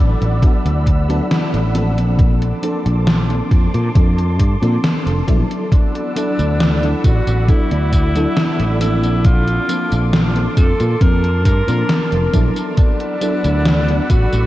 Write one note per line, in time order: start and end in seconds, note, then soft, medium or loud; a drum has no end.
0.00 0.13 A1 medium
0.00 0.37 F#3 medium
0.00 0.37 B3 medium
0.00 0.37 D4 medium
0.00 0.38 E4 medium
0.00 0.38 A4 medium
0.00 2.15 D5 medium
0.00 2.15 F#5 medium
0.00 2.16 B5 medium
0.00 2.15 E6 medium
0.21 0.42 A1 loud
0.21 closed hi-hat soft
0.42 0.65 F#3 medium
0.42 0.65 B3 medium
0.42 0.66 D4 medium
0.42 0.66 E4 medium
0.42 0.66 A4 medium
0.42 muted fretless electric bass stroke soft
0.42 kick loud
0.42 closed hi-hat medium
0.65 1.19 D2 medium
0.65 closed hi-hat soft
0.86 kick medium
0.86 closed hi-hat medium
1.09 1.69 F#3 medium
1.09 1.69 B3 medium
1.09 1.70 D4 medium
1.09 1.70 E4 medium
1.09 1.70 A4 loud
1.09 closed hi-hat soft
1.31 snare loud
1.31 closed hi-hat medium
1.54 1.98 A1 medium
1.54 closed hi-hat soft
1.74 2.58 F3 medium
1.74 2.58 A#3 medium
1.74 2.58 C4 medium
1.74 2.58 D4 medium
1.74 2.58 A4 medium
1.74 closed hi-hat medium
1.98 2.52 A#1 medium
1.98 closed hi-hat soft
2.18 5.68 A5 medium
2.18 5.68 C6 medium
2.18 5.68 D6 medium
2.18 kick loud
2.18 closed hi-hat medium
2.42 closed hi-hat soft
2.62 3.24 F3 medium
2.62 3.24 A#3 medium
2.62 3.24 C4 medium
2.62 3.25 D4 medium
2.62 3.25 A4 medium
2.62 closed hi-hat medium
2.86 3.40 A#1 medium
2.86 closed hi-hat soft
3.07 snare loud
3.07 closed hi-hat medium
3.29 3.90 F3 medium
3.29 3.90 A#3 medium
3.29 3.90 C4 medium
3.29 3.90 D4 medium
3.29 3.91 A4 medium
3.29 closed hi-hat soft
3.51 3.67 F2 medium
3.51 kick loud
3.51 closed hi-hat medium
3.74 3.88 A#2 loud
3.74 closed hi-hat soft
3.94 4.40 F2 medium
3.94 4.18 F3 medium
3.94 4.18 A#3 medium
3.94 4.18 C4 medium
3.94 4.19 D4 medium
3.94 4.19 A4 medium
3.94 kick loud
3.94 closed hi-hat medium
4.18 closed hi-hat soft
4.39 4.55 G2 medium
4.39 kick medium
4.39 closed hi-hat medium
4.61 4.77 A#2 medium
4.61 5.22 F3 medium
4.61 5.22 A#3 medium
4.61 5.23 C4 medium
4.61 5.23 D4 medium
4.61 5.23 A4 loud
4.61 closed hi-hat soft
4.84 snare loud
4.84 closed hi-hat medium
5.06 5.21 F1 medium
5.06 closed hi-hat soft
5.27 5.43 A#1 loud
5.27 6.11 F#3 medium
5.27 6.11 B3 medium
5.27 6.11 D4 medium
5.27 6.11 E4 medium
5.27 6.11 A4 medium
5.27 kick medium
5.27 closed hi-hat medium
5.51 closed hi-hat soft
5.72 7.06 D4 loud
5.72 9.21 D5 medium
5.72 9.21 F#5 medium
5.72 9.21 B5 medium
5.72 7.47 E6 medium
5.72 kick loud
5.72 closed hi-hat medium
5.72 tambourine soft
5.95 closed hi-hat soft
6.15 6.77 F#3 medium
6.15 6.77 B3 medium
6.15 6.78 D4 medium
6.15 6.78 E4 medium
6.15 6.78 A4 medium
6.15 closed hi-hat medium
6.15 tambourine medium
6.39 6.93 D2 medium
6.39 closed hi-hat soft
6.39 tambourine soft
6.60 snare loud
6.60 closed hi-hat medium
6.60 tambourine soft
6.82 7.43 F#3 medium
6.82 7.43 B3 medium
6.82 7.43 D4 medium
6.82 7.43 E4 medium
6.82 7.44 A4 medium
6.82 closed hi-hat soft
7.04 7.20 A1 medium
7.04 7.50 F#4 medium
7.04 kick loud
7.04 closed hi-hat medium
7.04 tambourine medium
7.27 7.48 A1 loud
7.27 closed hi-hat soft
7.27 tambourine soft
7.48 7.71 F#3 medium
7.48 7.71 B3 medium
7.48 7.72 D4 medium
7.48 8.80 E4 loud
7.48 7.72 E4 medium
7.48 7.72 A4 medium
7.48 12.74 D6 medium
7.48 kick loud
7.48 closed hi-hat medium
7.48 tambourine soft
7.71 8.25 D2 medium
7.71 closed hi-hat soft
7.92 kick medium
7.92 closed hi-hat medium
7.92 tambourine medium
8.15 8.75 F#3 medium
8.15 8.76 B3 medium
8.15 8.76 D4 medium
8.15 8.76 E4 medium
8.15 8.76 A4 loud
8.15 closed hi-hat soft
8.15 tambourine soft
8.37 snare loud
8.37 closed hi-hat medium
8.37 tambourine soft
8.59 9.04 A1 medium
8.59 closed hi-hat soft
8.80 9.63 F3 medium
8.80 9.64 A#3 medium
8.80 9.64 C4 medium
8.80 9.64 D4 medium
8.80 9.27 E4 loud
8.80 9.64 A4 medium
8.80 closed hi-hat medium
8.80 tambourine medium
9.03 9.58 A#1 medium
9.03 closed hi-hat soft
9.03 tambourine soft
9.25 10.31 F4 loud
9.25 12.74 A5 medium
9.25 12.74 C6 medium
9.25 kick loud
9.25 closed hi-hat medium
9.25 tambourine soft
9.48 closed hi-hat soft
9.68 10.30 F3 medium
9.68 10.30 A#3 medium
9.68 10.30 C4 medium
9.68 10.30 D4 medium
9.68 10.31 A4 medium
9.68 closed hi-hat medium
9.68 tambourine medium
9.92 10.46 A#1 medium
9.92 closed hi-hat soft
9.92 tambourine soft
10.13 snare loud
10.13 closed hi-hat medium
10.13 tambourine soft
10.35 10.96 F3 medium
10.35 10.96 A#3 medium
10.35 10.96 C4 medium
10.35 10.96 D4 medium
10.35 10.97 A4 medium
10.35 closed hi-hat soft
10.57 10.72 F2 medium
10.57 11.03 A4 loud
10.57 kick loud
10.57 closed hi-hat medium
10.57 tambourine medium
10.80 10.94 A#2 loud
10.80 closed hi-hat soft
10.80 tambourine soft
11.00 11.45 F2 medium
11.00 11.24 F3 medium
11.00 11.24 A#3 medium
11.00 11.24 C4 medium
11.00 11.24 D4 medium
11.00 11.25 A4 medium
11.00 11.45 A#4 loud
11.00 kick loud
11.00 closed hi-hat medium
11.00 tambourine soft
11.24 closed hi-hat soft
11.45 11.61 G2 medium
11.45 12.30 A#4 loud
11.45 kick medium
11.45 closed hi-hat medium
11.45 tambourine medium
11.67 11.82 A#2 loud
11.67 12.28 F3 medium
11.67 12.28 A#3 medium
11.67 12.28 C4 medium
11.67 12.28 D4 medium
11.67 12.29 A#4 loud
11.67 closed hi-hat soft
11.67 tambourine soft
11.89 snare loud
11.89 closed hi-hat medium
11.89 tambourine soft
12.12 12.26 F1 medium
12.12 closed hi-hat soft
12.32 12.49 A#1 loud
12.32 13.16 F#3 medium
12.32 13.16 B3 medium
12.32 13.17 D4 medium
12.32 13.17 E4 medium
12.32 13.17 A4 loud
12.32 kick medium
12.32 closed hi-hat medium
12.32 tambourine medium
12.56 closed hi-hat soft
12.56 tambourine soft
12.77 14.12 D4 loud
12.77 14.46 D5 medium
12.77 14.46 F#5 medium
12.77 14.46 B5 medium
12.77 14.46 E6 medium
12.77 kick loud
12.77 closed hi-hat medium
12.77 tambourine soft
13.00 closed hi-hat soft
13.21 13.83 F#3 medium
13.21 13.83 B3 medium
13.21 13.83 D4 medium
13.21 13.84 E4 medium
13.21 13.84 A4 medium
13.21 closed hi-hat medium
13.21 tambourine medium
13.44 13.99 D2 loud
13.44 closed hi-hat soft
13.44 tambourine soft
13.66 snare loud
13.66 closed hi-hat medium
13.66 tambourine soft
13.88 14.46 F#3 medium
13.88 14.46 B3 medium
13.88 14.46 D4 medium
13.88 14.46 E4 medium
13.88 14.46 A4 medium
13.88 closed hi-hat soft
14.10 14.25 A1 medium
14.10 14.46 F#4 loud
14.10 kick medium
14.10 closed hi-hat medium
14.10 tambourine medium
14.33 14.46 A1 loud
14.33 closed hi-hat soft
14.33 tambourine soft